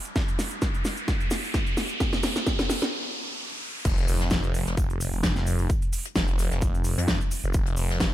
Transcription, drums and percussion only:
0.05 closed hi-hat soft
0.05 cabasa soft
0.16 kick loud
0.16 snare medium
0.16 closed hi-hat medium
0.16 cabasa medium
0.28 closed hi-hat soft
0.28 cabasa soft
0.39 snare medium
0.39 open hi-hat loud
0.39 cabasa medium
0.51 closed hi-hat soft
0.51 cabasa soft
0.62 kick loud
0.62 snare medium
0.62 closed hi-hat medium
0.62 cabasa medium
0.74 closed hi-hat soft
0.74 cabasa soft
0.85 snare medium
0.85 open hi-hat medium
0.85 cabasa medium
0.97 closed hi-hat soft
0.97 cabasa soft
1.08 kick loud
1.08 snare medium
1.08 closed hi-hat medium
1.08 cabasa soft
1.20 closed hi-hat soft
1.20 cabasa soft
1.31 snare medium
1.31 open hi-hat loud
1.31 cabasa loud
1.44 cabasa soft
1.54 kick loud
1.54 snare medium
1.54 closed hi-hat medium
1.54 cabasa medium
1.67 closed hi-hat soft
1.67 cabasa soft
1.77 snare medium
1.77 open hi-hat loud
1.77 cabasa medium
1.89 closed hi-hat soft
1.89 cabasa soft
2.00 kick loud
2.00 snare medium
2.00 closed hi-hat medium
2.00 cabasa soft
2.13 snare medium
2.13 closed hi-hat medium
2.13 cabasa soft
2.23 snare medium
2.23 open hi-hat loud
2.23 cabasa medium
2.36 snare medium
2.36 closed hi-hat soft
2.36 cabasa soft
2.47 kick loud
2.47 snare medium
2.47 closed hi-hat medium
2.47 cabasa soft
2.59 snare medium
2.59 closed hi-hat soft
2.59 cabasa soft
2.70 snare medium
2.70 open hi-hat medium
2.70 cabasa medium
2.82 snare medium
2.82 closed hi-hat soft
2.82 cabasa soft
3.85 kick loud
3.85 closed hi-hat medium
3.85 crash loud
3.85 cabasa medium
3.85 shaker medium
3.98 closed hi-hat medium
3.98 closed hi-hat soft
3.98 cabasa soft
4.08 open hi-hat loud
4.08 cabasa medium
4.08 shaker medium
4.20 snare soft
4.20 closed hi-hat soft
4.20 cabasa soft
4.30 kick loud
4.30 snare loud
4.30 closed hi-hat medium
4.30 cabasa soft
4.30 shaker medium
4.44 closed hi-hat soft
4.44 cabasa soft
4.54 open hi-hat medium
4.54 cabasa medium
4.54 shaker medium
4.67 snare soft
4.67 closed hi-hat medium
4.67 cabasa soft
4.77 kick loud
4.77 closed hi-hat medium
4.77 cabasa medium
4.77 shaker medium
4.90 closed hi-hat soft
4.90 cabasa soft
5.00 open hi-hat loud
5.00 cabasa loud
5.00 shaker medium
5.13 cabasa soft
5.23 kick loud
5.23 snare loud
5.23 closed hi-hat medium
5.23 cabasa medium
5.23 shaker medium
5.36 snare soft
5.36 closed hi-hat soft
5.36 cabasa soft
5.46 open hi-hat medium
5.46 cabasa loud
5.46 shaker medium
5.59 cabasa soft
5.69 kick loud
5.69 closed hi-hat medium
5.69 cabasa medium
5.69 shaker medium
5.82 closed hi-hat medium
5.82 cabasa soft
5.93 open hi-hat loud
5.93 cabasa loud
5.93 shaker medium
6.05 closed hi-hat soft
6.05 cabasa soft
6.16 kick loud
6.16 snare loud
6.16 closed hi-hat medium
6.16 cabasa medium
6.16 shaker medium
6.28 closed hi-hat soft
6.28 cabasa soft
6.38 snare soft
6.38 open hi-hat loud
6.38 cabasa medium
6.38 shaker medium
6.51 snare soft
6.51 closed hi-hat medium
6.51 cabasa soft
6.62 kick loud
6.62 closed hi-hat medium
6.62 cabasa medium
6.62 shaker medium
6.75 closed hi-hat soft
6.75 cabasa soft
6.84 open hi-hat loud
6.84 cabasa loud
6.84 shaker medium
6.98 closed hi-hat soft
6.98 cabasa soft
7.08 kick loud
7.08 snare loud
7.08 cabasa medium
7.08 shaker medium
7.21 closed hi-hat soft
7.21 cabasa soft
7.31 open hi-hat loud
7.31 cabasa medium
7.31 shaker medium
7.44 closed hi-hat soft
7.44 cabasa soft
7.54 kick loud
7.54 closed hi-hat medium
7.54 cabasa medium
7.54 shaker medium
7.66 closed hi-hat soft
7.66 closed hi-hat medium
7.66 cabasa soft
7.77 open hi-hat loud
7.77 cabasa medium
7.77 shaker medium
7.90 snare soft
7.90 closed hi-hat soft
7.90 cabasa soft
8.00 kick loud
8.00 snare loud
8.00 closed hi-hat medium
8.00 cabasa medium
8.00 shaker medium

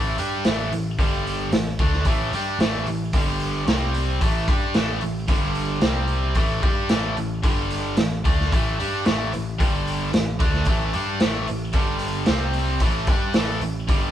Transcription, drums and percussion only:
0.18 open hi-hat soft
0.45 snare medium
0.45 open hi-hat medium
0.72 open hi-hat soft
0.99 kick loud
0.99 open hi-hat medium
1.27 open hi-hat soft
1.52 snare loud
1.52 open hi-hat medium
1.79 kick loud
1.79 open hi-hat soft
1.93 snare soft
2.05 kick medium
2.05 open hi-hat medium
2.33 open hi-hat medium
2.60 snare loud
2.60 open hi-hat medium
2.87 open hi-hat soft
3.13 kick loud
3.13 open hi-hat medium
3.40 open hi-hat soft
3.67 snare loud
3.67 open hi-hat medium
3.94 open hi-hat medium
4.21 kick medium
4.21 open hi-hat medium
4.48 kick loud
4.48 open hi-hat medium
4.74 snare loud
4.74 open hi-hat medium
5.01 open hi-hat soft
5.28 kick loud
5.28 open hi-hat medium
5.55 open hi-hat soft
5.81 snare loud
5.81 open hi-hat medium
6.08 open hi-hat soft
6.35 kick loud
6.35 open hi-hat medium
6.63 kick loud
6.63 open hi-hat soft
6.89 snare loud
6.89 open hi-hat medium
7.17 open hi-hat soft
7.43 kick loud
7.43 open hi-hat medium
7.71 open hi-hat soft
7.97 snare loud
7.97 open hi-hat medium
8.25 kick loud
8.25 open hi-hat medium
8.40 snare soft
8.52 kick loud
8.52 open hi-hat medium
8.80 open hi-hat medium
9.06 snare loud
9.06 open hi-hat medium
9.33 open hi-hat soft
9.60 kick loud
9.60 open hi-hat medium
9.87 open hi-hat soft
10.13 snare loud
10.13 open hi-hat medium
10.40 kick loud
10.40 open hi-hat medium
10.53 snare soft
10.65 kick loud
10.65 open hi-hat medium
10.93 open hi-hat soft
11.20 snare loud
11.20 open hi-hat medium
11.48 open hi-hat soft
11.73 kick medium
11.73 open hi-hat medium
11.99 open hi-hat soft
12.26 snare loud
12.26 open hi-hat medium
12.53 open hi-hat soft
12.80 kick medium
12.80 open hi-hat medium
13.07 kick loud
13.07 open hi-hat medium
13.34 snare loud
13.34 open hi-hat medium
13.61 open hi-hat soft
13.89 kick loud
13.89 open hi-hat medium

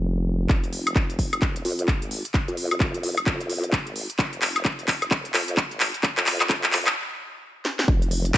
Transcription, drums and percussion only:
0.50 kick loud
0.50 clap soft
0.64 closed hi-hat soft
0.73 open hi-hat loud
0.87 closed hi-hat medium
0.87 high woodblock medium
0.96 kick loud
0.96 clap soft
1.10 closed hi-hat soft
1.19 kick medium
1.19 open hi-hat loud
1.33 closed hi-hat medium
1.33 high woodblock medium
1.42 kick loud
1.42 clap medium
1.56 closed hi-hat medium
1.65 open hi-hat loud
1.79 closed hi-hat medium
1.88 kick loud
1.88 clap medium
2.02 closed hi-hat soft
2.11 open hi-hat loud
2.25 closed hi-hat medium
2.34 kick loud
2.34 clap medium
2.48 closed hi-hat soft
2.57 open hi-hat loud
2.71 closed hi-hat medium
2.71 high woodblock medium
2.80 kick loud
2.80 clap medium
2.94 closed hi-hat soft
3.03 open hi-hat loud
3.17 closed hi-hat medium
3.17 high woodblock medium
3.26 kick loud
3.26 clap medium
3.41 closed hi-hat medium
3.50 open hi-hat loud
3.64 closed hi-hat medium
3.73 kick loud
3.73 clap medium
3.87 closed hi-hat soft
3.96 open hi-hat loud
4.10 closed hi-hat medium
4.19 kick loud
4.19 clap medium
4.33 closed hi-hat soft
4.42 clap medium
4.42 open hi-hat loud
4.56 closed hi-hat medium
4.56 high woodblock medium
4.65 kick loud
4.65 clap medium
4.79 closed hi-hat soft
4.88 kick medium
4.88 clap medium
4.88 open hi-hat loud
5.02 closed hi-hat medium
5.02 high woodblock medium
5.11 kick loud
5.11 clap medium
5.25 closed hi-hat medium
5.34 clap medium
5.34 open hi-hat loud
5.48 closed hi-hat medium
5.57 kick loud
5.57 clap medium
5.71 closed hi-hat soft
5.80 clap medium
5.80 open hi-hat loud
5.94 closed hi-hat medium
6.03 kick loud
6.03 clap medium
6.17 clap medium
6.17 closed hi-hat soft
6.26 clap medium
6.26 open hi-hat loud
6.41 clap medium
6.41 closed hi-hat medium
6.41 high woodblock medium
6.50 kick loud
6.50 clap loud
6.64 clap medium
6.64 closed hi-hat medium
6.73 clap medium
6.73 open hi-hat loud
6.87 clap medium
6.87 closed hi-hat medium
6.87 high woodblock medium
7.65 snare medium
7.79 snare medium
7.88 kick loud
8.02 closed hi-hat soft
8.11 open hi-hat loud
8.25 closed hi-hat medium
8.34 kick loud
8.34 clap loud

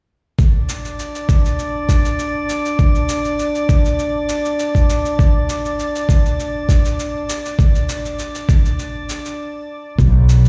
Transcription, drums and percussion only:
0.39 kick loud
0.39 shaker soft
0.69 shaker medium
0.85 shaker soft
0.99 shaker soft
1.15 shaker soft
1.29 kick medium
1.29 shaker medium
1.45 shaker soft
1.59 shaker soft
1.89 kick medium
1.89 shaker medium
2.05 shaker soft
2.19 shaker soft
2.49 shaker medium
2.65 shaker soft
2.79 kick loud
2.79 shaker soft
2.95 shaker soft
3.09 shaker medium
3.25 shaker soft
3.39 shaker soft
3.55 shaker soft
3.69 kick loud
3.69 shaker medium
3.85 shaker soft
3.99 shaker soft
4.29 shaker medium
4.45 shaker soft
4.59 shaker soft
4.75 kick medium
4.75 shaker soft
4.90 shaker medium
5.05 shaker soft
5.19 kick loud
5.19 shaker soft
5.49 shaker medium
5.65 shaker soft
5.79 shaker soft
5.95 shaker soft
6.09 kick loud
6.09 shaker medium
6.26 shaker soft
6.40 shaker soft
6.69 kick medium
6.69 shaker medium
6.85 shaker soft
6.99 shaker soft
7.29 shaker medium
7.45 shaker soft
7.59 kick loud
7.59 shaker soft
7.75 shaker soft
7.89 shaker medium
8.05 shaker soft
8.19 shaker soft
8.35 shaker soft
8.49 kick loud
8.49 shaker medium
8.65 shaker soft
8.79 shaker soft
9.09 shaker medium
9.25 shaker soft
9.99 kick loud
9.99 shaker soft
10.29 shaker medium
10.45 shaker soft

